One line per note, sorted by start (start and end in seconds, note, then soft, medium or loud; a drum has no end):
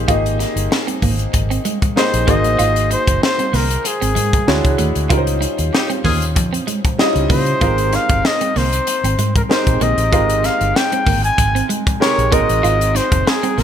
0.00 0.08 A#3 medium
0.00 0.08 D#4 medium
0.00 0.08 G4 medium
0.00 0.09 G#4 medium
0.00 2.28 C5 medium
0.08 0.43 G#1 loud
0.08 1.02 A#3 medium
0.08 1.03 D#4 medium
0.08 0.21 F4 medium
0.08 1.03 G4 medium
0.08 1.03 G#4 medium
0.08 1.03 D#5 medium
0.08 kick loud
0.08 closed hi-hat medium
0.26 closed hi-hat medium
0.39 0.52 D#4 medium
0.39 snare soft
0.39 closed hi-hat medium
0.39 muted conga soft
0.56 0.67 G1 medium
0.56 muted clean electric guitar stroke soft
0.56 closed hi-hat medium
0.71 muted clean electric guitar stroke soft
0.71 snare loud
0.71 muted conga soft
0.87 0.98 C4 medium
0.87 closed hi-hat medium
0.87 high conga medium
1.02 1.25 G#1 medium
1.02 1.15 A#3 medium
1.02 kick medium
1.02 open hi-hat medium
1.02 muted conga soft
1.02 low conga medium
1.19 closed hi-hat medium
1.33 1.56 G#1 loud
1.33 muted clean electric guitar stroke soft
1.33 kick medium
1.33 closed hi-hat medium
1.33 muted conga soft
1.50 1.61 C4 medium
1.50 closed hi-hat medium
1.65 1.78 G#3 medium
1.65 closed hi-hat medium
1.65 high conga medium
1.82 kick medium
1.82 closed hi-hat soft
1.82 high conga medium
1.96 2.26 A#3 medium
1.96 2.26 D#4 medium
1.96 2.28 G4 medium
1.96 2.27 G#4 medium
1.96 2.32 C5 loud
1.96 2.28 D#5 medium
1.96 snare loud
2.14 2.24 A#1 medium
2.14 closed hi-hat medium
2.27 2.45 G#1 medium
2.27 3.28 A#3 medium
2.27 2.40 A#3 medium
2.27 3.29 D#4 medium
2.27 3.29 F#4 medium
2.27 3.29 G#4 medium
2.27 3.29 C5 loud
2.27 2.92 D#5 loud
2.27 kick loud
2.27 closed hi-hat medium
2.27 low conga medium
2.44 2.55 A1 medium
2.44 closed hi-hat medium
2.59 2.94 G#1 loud
2.59 2.72 F4 medium
2.59 closed hi-hat medium
2.59 muted conga soft
2.76 closed hi-hat medium
2.90 3.03 D#4 medium
2.90 3.21 C5 loud
2.90 closed hi-hat medium
2.90 muted conga soft
3.07 3.18 F#1 medium
3.07 muted clean electric guitar stroke soft
3.07 kick medium
3.07 closed hi-hat medium
3.22 3.57 C5 loud
3.22 muted clean electric guitar stroke soft
3.22 snare loud
3.38 3.50 C4 medium
3.38 closed hi-hat medium
3.38 high conga medium
3.53 3.76 C2 loud
3.53 3.66 A#3 medium
3.53 3.88 A#4 medium
3.53 snare soft
3.53 open hi-hat medium
3.53 low conga medium
3.70 closed hi-hat medium
3.85 4.80 G#4 loud
3.85 muted clean electric guitar stroke soft
3.85 closed hi-hat medium
3.85 muted conga soft
4.01 4.18 G#1 medium
4.01 4.12 C4 medium
4.01 closed hi-hat medium
4.15 4.39 G#2 loud
4.15 4.28 G#3 medium
4.15 closed hi-hat medium
4.15 muted conga soft
4.15 high conga medium
4.33 kick loud
4.33 closed hi-hat soft
4.33 high conga medium
4.47 4.60 D2 medium
4.47 4.96 G#3 medium
4.47 4.96 D4 medium
4.47 4.96 E4 medium
4.47 4.96 F#4 medium
4.47 4.96 C#5 medium
4.47 snare loud
4.65 4.75 C#2 loud
4.65 kick loud
4.65 closed hi-hat medium
4.78 4.91 D#2 medium
4.78 4.91 A3 medium
4.78 closed hi-hat medium
4.78 muted conga soft
4.78 low conga medium
4.95 5.06 D2 medium
4.95 closed hi-hat medium
5.09 5.45 C#2 loud
5.09 6.04 G3 medium
5.09 6.05 C#4 medium
5.09 6.05 D#4 medium
5.09 5.22 F4 medium
5.09 6.05 F4 medium
5.09 5.18 A#4 medium
5.09 kick loud
5.09 closed hi-hat medium
5.09 muted conga soft
5.17 6.08 C5 medium
5.27 closed hi-hat medium
5.41 5.54 D#4 medium
5.41 closed hi-hat medium
5.41 muted conga soft
5.58 5.69 D#2 medium
5.58 muted clean electric guitar stroke soft
5.58 closed hi-hat medium
5.73 5.88 C4 medium
5.73 5.88 D#4 medium
5.73 5.88 G4 medium
5.73 muted clean electric guitar stroke soft
5.73 snare loud
5.73 muted conga soft
5.89 6.01 C4 medium
5.89 closed hi-hat medium
5.89 high conga soft
6.04 6.36 D#2 medium
6.04 6.17 A#3 medium
6.04 6.25 D#4 medium
6.04 6.25 F4 medium
6.04 6.25 G#4 loud
6.04 kick medium
6.04 open hi-hat medium
6.04 muted conga soft
6.04 low conga medium
6.22 closed hi-hat medium
6.36 6.59 F2 medium
6.36 muted clean electric guitar stroke soft
6.36 kick loud
6.36 closed hi-hat loud
6.36 low conga medium
6.53 6.64 C4 medium
6.53 closed hi-hat medium
6.67 6.80 G#3 medium
6.67 closed hi-hat medium
6.67 muted conga soft
6.67 high conga medium
6.85 kick loud
6.85 closed hi-hat soft
6.85 high conga medium
6.98 7.47 G3 loud
6.98 7.47 C#4 medium
6.98 7.47 D#4 medium
6.98 7.06 E4 medium
6.98 7.48 D#5 loud
6.98 snare loud
7.06 7.51 F4 medium
7.16 7.26 C#2 loud
7.16 closed hi-hat medium
7.30 7.53 C#3 loud
7.30 7.42 A#3 medium
7.30 7.97 C5 loud
7.30 kick medium
7.30 open hi-hat medium
7.30 low conga medium
7.46 closed hi-hat medium
7.61 7.96 G#1 loud
7.61 8.55 G#3 medium
7.61 8.56 C4 medium
7.61 8.56 D#4 medium
7.61 7.74 F4 medium
7.61 8.56 G4 medium
7.61 8.56 A#4 medium
7.61 kick loud
7.61 closed hi-hat medium
7.78 closed hi-hat medium
7.93 8.06 D#4 medium
7.93 8.28 F5 loud
7.93 snare soft
7.93 closed hi-hat medium
8.09 8.20 G1 medium
8.09 muted clean electric guitar stroke soft
8.09 kick loud
8.09 closed hi-hat medium
8.24 8.59 D#5 loud
8.24 muted clean electric guitar stroke soft
8.24 snare loud
8.24 muted conga soft
8.41 8.52 C4 medium
8.41 closed hi-hat medium
8.41 high conga medium
8.56 8.78 C2 loud
8.56 8.69 A#3 medium
8.56 9.36 C5 loud
8.56 snare soft
8.56 open hi-hat medium
8.56 muted conga soft
8.56 low conga medium
8.73 closed hi-hat medium
8.87 muted clean electric guitar stroke soft
8.87 closed hi-hat medium
8.87 muted conga soft
9.04 9.14 G#1 loud
9.04 9.15 C4 medium
9.04 closed hi-hat medium
9.18 9.41 G#2 medium
9.18 9.31 G#3 medium
9.18 closed hi-hat medium
9.18 muted conga soft
9.18 high conga medium
9.36 9.43 A#4 medium
9.36 kick loud
9.36 closed hi-hat soft
9.36 high conga medium
9.49 9.98 G#3 medium
9.49 9.98 C4 medium
9.49 9.98 D#4 medium
9.49 9.98 G4 medium
9.49 9.99 A#4 medium
9.49 9.84 C5 medium
9.49 snare loud
9.49 muted conga soft
9.67 9.77 A#1 medium
9.67 kick loud
9.67 closed hi-hat medium
9.81 9.93 A#1 medium
9.81 9.94 A#3 medium
9.81 10.47 D#5 loud
9.81 closed hi-hat medium
9.81 muted conga soft
9.81 low conga medium
9.98 10.13 A1 loud
9.98 closed hi-hat medium
10.12 10.47 G#1 loud
10.12 11.06 G#3 medium
10.12 11.07 C4 medium
10.12 11.07 D#4 medium
10.12 10.25 F4 medium
10.12 11.07 G4 medium
10.12 11.07 A#4 medium
10.12 kick loud
10.12 closed hi-hat medium
10.12 muted conga soft
10.30 closed hi-hat medium
10.43 10.57 D#4 medium
10.43 10.78 F5 loud
10.43 snare soft
10.43 closed hi-hat medium
10.43 muted conga soft
10.61 10.71 G1 medium
10.61 muted clean electric guitar stroke soft
10.61 closed hi-hat soft
10.76 11.24 G5 loud
10.76 muted clean electric guitar stroke soft
10.76 snare loud
10.92 11.03 C4 medium
10.92 closed hi-hat medium
10.92 high conga medium
11.06 11.29 G#1 loud
11.06 11.20 A#3 medium
11.06 kick medium
11.06 open hi-hat medium
11.06 low conga medium
11.24 11.71 G#5 loud
11.24 closed hi-hat medium
11.38 11.60 G#1 medium
11.38 muted clean electric guitar stroke soft
11.38 kick loud
11.38 closed hi-hat medium
11.55 11.66 C4 medium
11.55 closed hi-hat medium
11.69 11.82 G#3 medium
11.69 closed hi-hat medium
11.69 muted conga soft
11.69 high conga medium
11.87 kick loud
11.87 closed hi-hat medium
11.87 high conga medium
12.00 12.32 C3 medium
12.00 12.30 G#3 medium
12.00 12.30 D#4 medium
12.00 12.32 G4 medium
12.00 12.31 A#4 medium
12.00 12.35 C#5 loud
12.00 snare loud
12.18 12.33 A#1 loud
12.18 closed hi-hat medium
12.31 12.45 G#1 loud
12.31 13.32 G#3 medium
12.31 12.45 A#3 medium
12.31 13.33 C4 medium
12.31 13.33 D#4 medium
12.31 13.33 F#4 medium
12.31 13.33 A#4 loud
12.31 12.98 D#5 loud
12.31 kick loud
12.31 closed hi-hat medium
12.31 muted conga soft
12.31 low conga medium
12.49 12.60 A1 medium
12.49 closed hi-hat medium
12.63 12.98 G#1 loud
12.63 12.76 F4 medium
12.63 closed hi-hat medium
12.63 muted conga soft
12.81 closed hi-hat medium
12.95 13.08 D#4 medium
12.95 13.30 C5 loud
12.95 snare soft
12.95 closed hi-hat medium
12.95 muted conga soft
13.12 13.22 F#1 medium
13.12 muted clean electric guitar stroke soft
13.12 kick loud
13.12 closed hi-hat medium
13.26 13.61 G#4 loud
13.26 muted clean electric guitar stroke soft
13.26 snare loud
13.26 muted conga soft
13.43 13.54 C4 medium
13.43 closed hi-hat medium
13.43 high conga medium
13.58 13.63 A#1 medium
13.58 13.63 A#3 medium
13.58 13.63 A#4 loud
13.58 snare soft
13.58 open hi-hat medium
13.58 muted conga soft
13.58 low conga medium